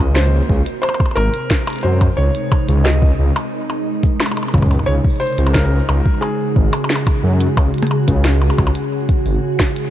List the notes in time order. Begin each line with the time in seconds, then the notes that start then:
Already playing: C3 A#3 F#4 A#4 D#5
0.00 C#2
0.15 C5, snare
0.27 G#3
0.49 C#2, kick
0.66 closed hi-hat
0.82 C5, percussion blips
0.89 percussion blips
0.94 percussion blips
1.00 kick, percussion blips
1.06 percussion blips
1.11 percussion blips
1.16 G#1 D#4 A#4, percussion blips
1.34 closed hi-hat
1.51 kick, snare
1.67 closed hi-hat, percussion blips
1.70 closed hi-hat
1.76 closed hi-hat
1.79 closed hi-hat
1.81 F#2 C5, closed hi-hat
2.01 kick, closed hi-hat, percussion blips
2.17 C#2 C#5
2.35 closed hi-hat
2.52 kick, percussion blips
2.69 C#2, closed hi-hat
2.84 D#5, snare
3.02 kick
3.19 C#2
3.36 closed hi-hat, percussion blips
3.70 percussion blips
4.03 kick, closed hi-hat
4.20 snare, percussion blips
4.26 percussion blips
4.32 percussion blips
4.37 closed hi-hat, percussion blips
4.43 percussion blips
4.48 percussion blips
4.54 C#2, kick, percussion blips
4.58 kick
4.62 kick, percussion blips
4.67 kick
4.71 kick, open hi-hat, percussion blips
4.75 kick
4.79 kick, percussion blips
4.83 C#5, kick
4.88 C#2 C#3
5.04 kick, open hi-hat
5.10 open hi-hat
5.16 open hi-hat
5.20 F#4 C5, open hi-hat
5.27 open hi-hat
5.33 open hi-hat
5.38 C#2, closed hi-hat
5.47 percussion blips
5.53 A#4, kick, snare
5.89 C#2, percussion blips
6.06 G#4, kick
6.21 G#4, percussion blips
6.56 G#1, kick
6.73 closed hi-hat, percussion blips
6.84 percussion blips
6.90 snare
6.96 percussion blips
7.07 kick, closed hi-hat, percussion blips
7.23 F#2
7.40 closed hi-hat
7.57 C#2, kick, percussion blips
7.74 closed hi-hat
7.78 closed hi-hat
7.83 closed hi-hat, percussion blips
7.87 closed hi-hat
7.91 percussion blips
8.08 C#2, kick, closed hi-hat
8.25 snare
8.42 percussion blips
8.50 percussion blips
8.58 C#2, kick, percussion blips
8.67 percussion blips
8.75 closed hi-hat
9.09 kick, closed hi-hat
9.26 G#1, open hi-hat
9.60 kick, snare, percussion blips
9.76 closed hi-hat